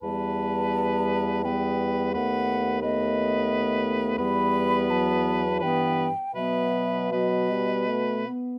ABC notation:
X:1
M:3/4
L:1/8
Q:1/4=84
K:Em
V:1 name="Flute"
a4 g2 | f2 ^d3 z | b2 a2 g2 | e2 ^d2 z2 |]
V:2 name="Oboe"
B4 B2 | B2 B4 | B4 B z | B2 B3 z |]
V:3 name="Clarinet"
B,4 B,2 | B,2 B,4 | B,4 B, z | B,2 B,3 z |]
V:4 name="French horn" clef=bass
G,4 G,2 | A,2 A,4 | G,2 F,2 E, z | F,2 F, G, A, B, |]
V:5 name="Bassoon" clef=bass
E,,6 | ^D,,6 | E,,4 G,, z | B,,4- B,, z |]